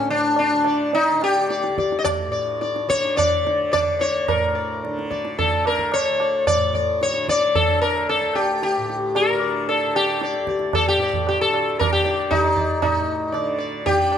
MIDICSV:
0, 0, Header, 1, 4, 480
1, 0, Start_track
1, 0, Tempo, 560224
1, 1763, Time_signature, 4, 2, 24, 8
1, 3193, Tempo, 546448
1, 6553, Tempo, 532387
1, 9433, Tempo, 518135
1, 12613, End_track
2, 0, Start_track
2, 0, Title_t, "Sitar"
2, 0, Program_c, 0, 104
2, 89, Note_on_c, 0, 62, 85
2, 322, Note_off_c, 0, 62, 0
2, 333, Note_on_c, 0, 62, 81
2, 566, Note_on_c, 0, 74, 38
2, 775, Note_off_c, 0, 62, 0
2, 787, Note_off_c, 0, 74, 0
2, 810, Note_on_c, 0, 63, 86
2, 1054, Note_off_c, 0, 63, 0
2, 1059, Note_on_c, 0, 67, 87
2, 1287, Note_on_c, 0, 74, 38
2, 1499, Note_off_c, 0, 67, 0
2, 1509, Note_off_c, 0, 74, 0
2, 1528, Note_on_c, 0, 74, 38
2, 1699, Note_off_c, 0, 74, 0
2, 1702, Note_on_c, 0, 75, 64
2, 1748, Note_off_c, 0, 75, 0
2, 1752, Note_on_c, 0, 74, 99
2, 1756, Note_off_c, 0, 74, 0
2, 1756, Note_on_c, 0, 74, 40
2, 1976, Note_off_c, 0, 74, 0
2, 1986, Note_on_c, 0, 74, 41
2, 2216, Note_off_c, 0, 74, 0
2, 2238, Note_on_c, 0, 74, 38
2, 2461, Note_off_c, 0, 74, 0
2, 2474, Note_on_c, 0, 74, 42
2, 2481, Note_on_c, 0, 73, 95
2, 2698, Note_off_c, 0, 74, 0
2, 2708, Note_on_c, 0, 74, 38
2, 2715, Note_off_c, 0, 73, 0
2, 2718, Note_off_c, 0, 74, 0
2, 2718, Note_on_c, 0, 74, 86
2, 3173, Note_off_c, 0, 74, 0
2, 3184, Note_on_c, 0, 74, 40
2, 3195, Note_off_c, 0, 74, 0
2, 3195, Note_on_c, 0, 74, 98
2, 3416, Note_off_c, 0, 74, 0
2, 3426, Note_on_c, 0, 74, 30
2, 3440, Note_on_c, 0, 73, 75
2, 3657, Note_off_c, 0, 74, 0
2, 3685, Note_on_c, 0, 70, 63
2, 3688, Note_off_c, 0, 73, 0
2, 3916, Note_on_c, 0, 74, 35
2, 4143, Note_off_c, 0, 74, 0
2, 4372, Note_off_c, 0, 70, 0
2, 4404, Note_on_c, 0, 74, 37
2, 4628, Note_off_c, 0, 74, 0
2, 4650, Note_on_c, 0, 69, 79
2, 4894, Note_off_c, 0, 69, 0
2, 4900, Note_on_c, 0, 70, 77
2, 5134, Note_on_c, 0, 73, 92
2, 5139, Note_off_c, 0, 70, 0
2, 5373, Note_on_c, 0, 74, 32
2, 5591, Note_off_c, 0, 74, 0
2, 5600, Note_off_c, 0, 73, 0
2, 5603, Note_on_c, 0, 74, 91
2, 5837, Note_off_c, 0, 74, 0
2, 5847, Note_on_c, 0, 74, 37
2, 6065, Note_off_c, 0, 74, 0
2, 6092, Note_on_c, 0, 73, 82
2, 6322, Note_off_c, 0, 73, 0
2, 6326, Note_on_c, 0, 74, 96
2, 6554, Note_on_c, 0, 69, 85
2, 6565, Note_off_c, 0, 74, 0
2, 6787, Note_off_c, 0, 69, 0
2, 6791, Note_on_c, 0, 70, 88
2, 7018, Note_off_c, 0, 70, 0
2, 7041, Note_on_c, 0, 69, 79
2, 7275, Note_on_c, 0, 67, 65
2, 7288, Note_off_c, 0, 69, 0
2, 7515, Note_off_c, 0, 67, 0
2, 7526, Note_on_c, 0, 67, 78
2, 8002, Note_on_c, 0, 70, 82
2, 8018, Note_off_c, 0, 67, 0
2, 8231, Note_on_c, 0, 74, 36
2, 8458, Note_off_c, 0, 74, 0
2, 8475, Note_off_c, 0, 70, 0
2, 8478, Note_on_c, 0, 69, 70
2, 8720, Note_off_c, 0, 69, 0
2, 8724, Note_on_c, 0, 67, 73
2, 8971, Note_on_c, 0, 74, 36
2, 9164, Note_off_c, 0, 67, 0
2, 9185, Note_off_c, 0, 74, 0
2, 9198, Note_on_c, 0, 74, 31
2, 9416, Note_off_c, 0, 74, 0
2, 9435, Note_on_c, 0, 69, 77
2, 9437, Note_on_c, 0, 74, 33
2, 9547, Note_off_c, 0, 69, 0
2, 9561, Note_on_c, 0, 67, 87
2, 9658, Note_off_c, 0, 74, 0
2, 9689, Note_on_c, 0, 74, 35
2, 9908, Note_off_c, 0, 74, 0
2, 9922, Note_off_c, 0, 67, 0
2, 9934, Note_on_c, 0, 67, 75
2, 10047, Note_off_c, 0, 67, 0
2, 10051, Note_on_c, 0, 69, 80
2, 10400, Note_off_c, 0, 69, 0
2, 10404, Note_on_c, 0, 70, 84
2, 10408, Note_on_c, 0, 74, 34
2, 10522, Note_off_c, 0, 70, 0
2, 10526, Note_on_c, 0, 67, 87
2, 10628, Note_off_c, 0, 74, 0
2, 10639, Note_on_c, 0, 74, 35
2, 10864, Note_off_c, 0, 74, 0
2, 10878, Note_on_c, 0, 63, 83
2, 10878, Note_on_c, 0, 74, 35
2, 10895, Note_off_c, 0, 67, 0
2, 11102, Note_off_c, 0, 74, 0
2, 11118, Note_on_c, 0, 74, 28
2, 11342, Note_off_c, 0, 74, 0
2, 11344, Note_off_c, 0, 63, 0
2, 11355, Note_on_c, 0, 63, 63
2, 11820, Note_on_c, 0, 74, 35
2, 12036, Note_off_c, 0, 63, 0
2, 12050, Note_off_c, 0, 74, 0
2, 12063, Note_on_c, 0, 74, 39
2, 12290, Note_off_c, 0, 74, 0
2, 12317, Note_on_c, 0, 67, 90
2, 12613, Note_off_c, 0, 67, 0
2, 12613, End_track
3, 0, Start_track
3, 0, Title_t, "Tanpura"
3, 0, Program_c, 1, 104
3, 0, Note_on_c, 1, 38, 66
3, 0, Note_on_c, 1, 45, 58
3, 0, Note_on_c, 1, 50, 61
3, 464, Note_off_c, 1, 50, 0
3, 464, Note_on_c, 1, 50, 62
3, 954, Note_off_c, 1, 50, 0
3, 954, Note_on_c, 1, 50, 54
3, 1442, Note_off_c, 1, 38, 0
3, 1445, Note_on_c, 1, 38, 60
3, 1941, Note_off_c, 1, 45, 0
3, 1944, Note_on_c, 1, 45, 63
3, 2460, Note_off_c, 1, 50, 0
3, 2460, Note_on_c, 1, 50, 62
3, 2950, Note_off_c, 1, 50, 0
3, 2950, Note_on_c, 1, 50, 64
3, 3437, Note_off_c, 1, 38, 0
3, 3441, Note_on_c, 1, 38, 58
3, 3703, Note_off_c, 1, 45, 0
3, 3707, Note_on_c, 1, 45, 60
3, 4193, Note_off_c, 1, 50, 0
3, 4193, Note_on_c, 1, 50, 61
3, 4676, Note_off_c, 1, 50, 0
3, 4676, Note_on_c, 1, 50, 57
3, 5171, Note_off_c, 1, 38, 0
3, 5175, Note_on_c, 1, 38, 65
3, 5668, Note_off_c, 1, 45, 0
3, 5671, Note_on_c, 1, 45, 61
3, 6157, Note_off_c, 1, 50, 0
3, 6157, Note_on_c, 1, 50, 62
3, 6657, Note_off_c, 1, 50, 0
3, 6657, Note_on_c, 1, 50, 56
3, 7142, Note_off_c, 1, 38, 0
3, 7146, Note_on_c, 1, 38, 60
3, 7650, Note_off_c, 1, 45, 0
3, 7653, Note_on_c, 1, 45, 59
3, 8146, Note_off_c, 1, 50, 0
3, 8146, Note_on_c, 1, 50, 62
3, 8646, Note_off_c, 1, 50, 0
3, 8646, Note_on_c, 1, 50, 59
3, 9111, Note_off_c, 1, 38, 0
3, 9114, Note_on_c, 1, 38, 57
3, 9612, Note_off_c, 1, 45, 0
3, 9615, Note_on_c, 1, 45, 55
3, 10127, Note_off_c, 1, 50, 0
3, 10127, Note_on_c, 1, 50, 57
3, 10615, Note_off_c, 1, 50, 0
3, 10615, Note_on_c, 1, 50, 52
3, 11102, Note_off_c, 1, 38, 0
3, 11106, Note_on_c, 1, 38, 55
3, 11341, Note_off_c, 1, 45, 0
3, 11345, Note_on_c, 1, 45, 55
3, 11842, Note_off_c, 1, 50, 0
3, 11842, Note_on_c, 1, 50, 62
3, 12339, Note_off_c, 1, 50, 0
3, 12339, Note_on_c, 1, 50, 61
3, 12613, Note_off_c, 1, 38, 0
3, 12613, Note_off_c, 1, 45, 0
3, 12613, Note_off_c, 1, 50, 0
3, 12613, End_track
4, 0, Start_track
4, 0, Title_t, "Tabla"
4, 311, Note_on_c, 9, 60, 66
4, 397, Note_off_c, 9, 60, 0
4, 552, Note_on_c, 9, 60, 63
4, 638, Note_off_c, 9, 60, 0
4, 800, Note_on_c, 9, 63, 92
4, 886, Note_off_c, 9, 63, 0
4, 1043, Note_on_c, 9, 60, 63
4, 1128, Note_off_c, 9, 60, 0
4, 1288, Note_on_c, 9, 62, 67
4, 1374, Note_off_c, 9, 62, 0
4, 1404, Note_on_c, 9, 62, 63
4, 1490, Note_off_c, 9, 62, 0
4, 1524, Note_on_c, 9, 37, 63
4, 1609, Note_off_c, 9, 37, 0
4, 1647, Note_on_c, 9, 62, 57
4, 1733, Note_off_c, 9, 62, 0
4, 1761, Note_on_c, 9, 60, 79
4, 1761, Note_on_c, 9, 64, 66
4, 1846, Note_off_c, 9, 60, 0
4, 1846, Note_off_c, 9, 64, 0
4, 2242, Note_on_c, 9, 62, 64
4, 2328, Note_off_c, 9, 62, 0
4, 2365, Note_on_c, 9, 62, 58
4, 2451, Note_off_c, 9, 62, 0
4, 2484, Note_on_c, 9, 37, 68
4, 2569, Note_off_c, 9, 37, 0
4, 2614, Note_on_c, 9, 62, 65
4, 2700, Note_off_c, 9, 62, 0
4, 2729, Note_on_c, 9, 60, 90
4, 2729, Note_on_c, 9, 64, 83
4, 2815, Note_off_c, 9, 60, 0
4, 2815, Note_off_c, 9, 64, 0
4, 2970, Note_on_c, 9, 62, 68
4, 3056, Note_off_c, 9, 62, 0
4, 3205, Note_on_c, 9, 60, 78
4, 3205, Note_on_c, 9, 64, 65
4, 3293, Note_off_c, 9, 60, 0
4, 3293, Note_off_c, 9, 64, 0
4, 3445, Note_on_c, 9, 62, 65
4, 3533, Note_off_c, 9, 62, 0
4, 3682, Note_on_c, 9, 60, 104
4, 3682, Note_on_c, 9, 64, 85
4, 3770, Note_off_c, 9, 60, 0
4, 3770, Note_off_c, 9, 64, 0
4, 4176, Note_on_c, 9, 62, 68
4, 4264, Note_off_c, 9, 62, 0
4, 4301, Note_on_c, 9, 62, 53
4, 4389, Note_off_c, 9, 62, 0
4, 4411, Note_on_c, 9, 37, 57
4, 4499, Note_off_c, 9, 37, 0
4, 4529, Note_on_c, 9, 62, 60
4, 4617, Note_off_c, 9, 62, 0
4, 4653, Note_on_c, 9, 63, 89
4, 4653, Note_on_c, 9, 64, 81
4, 4741, Note_off_c, 9, 63, 0
4, 4741, Note_off_c, 9, 64, 0
4, 4887, Note_on_c, 9, 60, 62
4, 4975, Note_off_c, 9, 60, 0
4, 5004, Note_on_c, 9, 37, 56
4, 5092, Note_off_c, 9, 37, 0
4, 5118, Note_on_c, 9, 60, 69
4, 5206, Note_off_c, 9, 60, 0
4, 5365, Note_on_c, 9, 60, 61
4, 5452, Note_off_c, 9, 60, 0
4, 5604, Note_on_c, 9, 60, 68
4, 5604, Note_on_c, 9, 64, 62
4, 5692, Note_off_c, 9, 60, 0
4, 5692, Note_off_c, 9, 64, 0
4, 5836, Note_on_c, 9, 64, 56
4, 5924, Note_off_c, 9, 64, 0
4, 6080, Note_on_c, 9, 62, 67
4, 6168, Note_off_c, 9, 62, 0
4, 6190, Note_on_c, 9, 62, 55
4, 6278, Note_off_c, 9, 62, 0
4, 6319, Note_on_c, 9, 37, 58
4, 6407, Note_off_c, 9, 37, 0
4, 6436, Note_on_c, 9, 62, 58
4, 6524, Note_off_c, 9, 62, 0
4, 6554, Note_on_c, 9, 63, 89
4, 6554, Note_on_c, 9, 64, 81
4, 6644, Note_off_c, 9, 63, 0
4, 6644, Note_off_c, 9, 64, 0
4, 6801, Note_on_c, 9, 60, 59
4, 6891, Note_off_c, 9, 60, 0
4, 7044, Note_on_c, 9, 60, 69
4, 7134, Note_off_c, 9, 60, 0
4, 7281, Note_on_c, 9, 60, 59
4, 7371, Note_off_c, 9, 60, 0
4, 7520, Note_on_c, 9, 62, 78
4, 7610, Note_off_c, 9, 62, 0
4, 7765, Note_on_c, 9, 62, 63
4, 7855, Note_off_c, 9, 62, 0
4, 7995, Note_on_c, 9, 60, 69
4, 8085, Note_off_c, 9, 60, 0
4, 8479, Note_on_c, 9, 63, 86
4, 8569, Note_off_c, 9, 63, 0
4, 8720, Note_on_c, 9, 60, 63
4, 8810, Note_off_c, 9, 60, 0
4, 8953, Note_on_c, 9, 62, 64
4, 9043, Note_off_c, 9, 62, 0
4, 9063, Note_on_c, 9, 62, 61
4, 9153, Note_off_c, 9, 62, 0
4, 9185, Note_on_c, 9, 37, 60
4, 9275, Note_off_c, 9, 37, 0
4, 9294, Note_on_c, 9, 62, 56
4, 9384, Note_off_c, 9, 62, 0
4, 9421, Note_on_c, 9, 60, 69
4, 9421, Note_on_c, 9, 64, 64
4, 9513, Note_off_c, 9, 60, 0
4, 9513, Note_off_c, 9, 64, 0
4, 9667, Note_on_c, 9, 62, 56
4, 9760, Note_off_c, 9, 62, 0
4, 9794, Note_on_c, 9, 64, 56
4, 9886, Note_off_c, 9, 64, 0
4, 9917, Note_on_c, 9, 60, 69
4, 10009, Note_off_c, 9, 60, 0
4, 10168, Note_on_c, 9, 60, 60
4, 10260, Note_off_c, 9, 60, 0
4, 10417, Note_on_c, 9, 60, 86
4, 10417, Note_on_c, 9, 64, 81
4, 10510, Note_off_c, 9, 60, 0
4, 10510, Note_off_c, 9, 64, 0
4, 10652, Note_on_c, 9, 62, 60
4, 10745, Note_off_c, 9, 62, 0
4, 10885, Note_on_c, 9, 60, 71
4, 10885, Note_on_c, 9, 64, 63
4, 10978, Note_off_c, 9, 60, 0
4, 10978, Note_off_c, 9, 64, 0
4, 11120, Note_on_c, 9, 64, 54
4, 11213, Note_off_c, 9, 64, 0
4, 11357, Note_on_c, 9, 60, 89
4, 11357, Note_on_c, 9, 64, 73
4, 11450, Note_off_c, 9, 60, 0
4, 11450, Note_off_c, 9, 64, 0
4, 11839, Note_on_c, 9, 60, 73
4, 11932, Note_off_c, 9, 60, 0
4, 12322, Note_on_c, 9, 63, 81
4, 12322, Note_on_c, 9, 64, 80
4, 12415, Note_off_c, 9, 63, 0
4, 12415, Note_off_c, 9, 64, 0
4, 12558, Note_on_c, 9, 60, 60
4, 12613, Note_off_c, 9, 60, 0
4, 12613, End_track
0, 0, End_of_file